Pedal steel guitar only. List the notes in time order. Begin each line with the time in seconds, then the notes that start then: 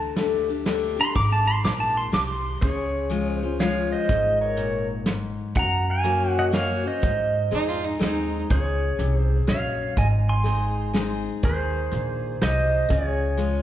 1.01 C6
1.16 D6
1.32 A5
1.47 C6
1.65 D6
1.80 A5
1.97 C6
2.14 D6
2.28 C6
2.61 G#4 C#5
3.29 C5
3.60 C#5 F5
3.92 C5 D#5
4.41 A#4 C#5
5.57 F#5 A#5
5.90 F5 G#5
6.39 D#5 F#5
6.54 C#5 F5
6.87 C5 D#5
8.51 G#4 C#5
9.18 C5
9.49 C#5 F5
9.98 D#5 G#5
10.29 G#5 C6
11.45 G#4 C5
12.42 C5 D#5
12.92 G#4 C#5